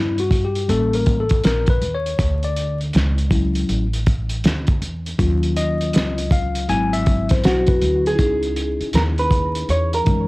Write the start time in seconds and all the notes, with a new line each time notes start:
Already playing: G2 E4
0.18 F#4, closed hi-hat
0.31 kick, closed hi-hat
0.45 G4
0.55 closed hi-hat
0.68 A1 G3 A#3 C#4 A4, closed hi-hat
0.93 A#4, closed hi-hat
1.06 kick, closed hi-hat
1.20 A4
1.29 kick, closed hi-hat
1.44 A#1 A#4, snare, closed hi-hat
1.66 B4, kick, closed hi-hat
1.82 D#2, closed hi-hat
1.94 C#5
2.06 closed hi-hat
2.19 D2, kick, closed hi-hat
2.43 D5, closed hi-hat
2.56 closed hi-hat
2.81 closed hi-hat
2.93 C#2, snare, closed hi-hat
3.18 closed hi-hat
3.31 F#3 C#4 E4, kick, closed hi-hat
3.55 closed hi-hat
3.69 A1, closed hi-hat
3.93 closed hi-hat
4.06 kick, closed hi-hat
4.29 closed hi-hat
4.44 D2, snare, closed hi-hat
4.67 kick, closed hi-hat
4.82 E2, closed hi-hat
5.06 closed hi-hat
5.18 D#2 F#3 C#4 F4, kick, closed hi-hat
5.43 closed hi-hat
5.57 D#5, closed hi-hat
5.81 closed hi-hat
5.93 C#2, snare, closed hi-hat
6.18 closed hi-hat
6.31 F5, kick, closed hi-hat
6.55 closed hi-hat
6.68 G#1 F#3 C4 E4 G#5, closed hi-hat
6.93 E5, closed hi-hat
7.06 kick, closed hi-hat
7.29 C5, kick, snare, closed hi-hat
7.44 B1 F#4, snare, closed hi-hat
7.66 B4, kick, closed hi-hat
7.82 D2, closed hi-hat
8.06 G#4, closed hi-hat
8.15 C#2 C#4 E4, kick, closed hi-hat
8.20 D#4 G#4
8.43 closed hi-hat
8.56 closed hi-hat
8.80 muted upright bass stroke, closed hi-hat
8.93 D#2 A#4, snare, closed hi-hat
9.18 B4, closed hi-hat
9.31 kick, closed hi-hat
9.55 closed hi-hat
9.69 E2 C#5, closed hi-hat
9.93 A#4, closed hi-hat
10.04 F#2 D#3 G#3 C#4 D#4, kick, closed hi-hat
10.11 E3